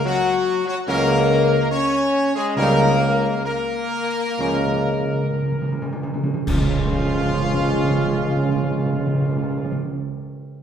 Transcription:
Already playing: C#3
0.05 F#3 F#4
0.66 F#3 F#4
0.87 C#2 F#3 A#3 C#4 A#4
1.70 C#4 C#5
2.35 G#3 G#4
2.56 C#2 C#3 G3 A#3 D#4 A#4
3.44 A#3 A#4
4.38 C#2 C#3 F3 C#4
4.48 C#3
4.57 C#3
4.66 C#3
4.75 C#3
4.85 C#3
4.94 C#3
5.04 C#3
5.13 C#3
5.23 C#3
5.32 C#3
5.42 C#3
5.52 C#3
5.61 C#3
5.72 C#3
5.82 C#3
5.93 C#3
6.03 C#3
6.14 C#3
6.24 C#3
6.34 C#3
6.47 C#2 C#3 F3 C#4 F4, concert bass drum, crash
6.55 C#3
6.62 C#3
6.69 C#3
6.78 C#3
6.85 C#3
6.93 C#3
7.00 C#3
7.07 C#3
7.15 C#3
7.22 C#3
7.31 C#3
7.39 C#3
7.46 C#3
7.54 C#3
7.61 C#3
7.68 C#3
7.76 C#3
7.83 C#3
7.91 C#3
7.99 C#3
8.06 C#3
8.13 C#3
8.20 C#3
8.28 C#3
8.35 C#3
8.42 C#3
8.49 C#3
8.56 C#3
8.63 C#3
8.71 C#3
8.78 C#3
8.86 C#3
8.93 C#3
9.00 C#3
9.07 C#3
9.14 C#3
9.22 C#3
9.29 C#3
9.36 C#3
9.43 C#3
9.51 C#3
9.57 C#3
9.65 C#3
9.72 C#3

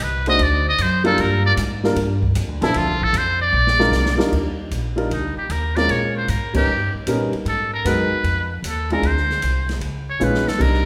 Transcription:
0.00 C2 B4
0.26 A3 D4 D#4 F#4 C5 D#5, ride
0.39 D2 D5, ride
0.68 D#5
0.78 F#2 C5, hi-hat pedal, ride
1.04 G3 A#3 D4 F4 A4 A#4, ride
1.18 G2 A#4, ride
1.46 D5
1.57 G#2, hi-hat pedal, ride
1.84 G3 A#3 D4 F4 A#4, snare
1.96 G2, ride
2.23 kick
2.35 F2, hi-hat pedal, ride
2.48 D2
2.61 A#1 F3 C4 D4 E4 A4, snare, ride
2.74 D2 F4, ride
2.89 C2
3.02 A1 A4
3.13 F2, hi-hat pedal, ride
3.18 C5
3.42 D5
3.53 A#1
3.67 snare
3.79 G#3 C4 D4 F4 A#4, snare
3.92 C2, snare, hi-hat pedal
4.06 snare
4.17 G3 D4 D#4 F4 A#4, muted upright bass stroke, snare
4.32 D#2, kick, crash
4.71 A#1, hi-hat pedal, ride
4.96 G3 D4 D#4 F4 A#4, ride
5.11 D2 D#4, ride
5.36 G4, muted upright bass stroke
5.50 D#2 A#4, hi-hat pedal, ride
5.76 G#3 C4 C#4 F4 A#4 D5, snare, ride
5.88 A#2 C#5, ride
6.17 C5
6.28 G#2 A#4, hi-hat pedal, ride
6.53 G3 B3 C#4 D#4 G4 A#4, kick, crash
6.68 G2
6.94 muted upright bass stroke
7.07 A#2 G3 B3 C#4 D#4 A#4, hi-hat pedal, ride
7.33 muted upright bass stroke, ride
7.45 G#2 A4, ride
7.73 A#4
7.85 F#2 G#3 B3 D#4 F#4 A#4 B4, hi-hat pedal, ride
8.11 muted upright bass stroke
8.23 F2, ride
8.62 D#2, hi-hat pedal, ride
8.67 A4
8.90 G#3 C4 D4 F4 G#4 A#4, ride
9.02 D2, ride
9.07 C5
9.17 snare
9.30 snare
9.42 C2, hi-hat pedal, ride
9.69 snare, ride
9.80 C#2, ride
10.10 C#5
10.20 A#1 G#3 C#4 D#4 F4 B4, hi-hat pedal
10.24 B4
10.34 snare
10.47 A4, muted upright bass stroke, snare
10.58 C2 G3 C4 D4 D#4 A#4, kick, crash
10.73 snare

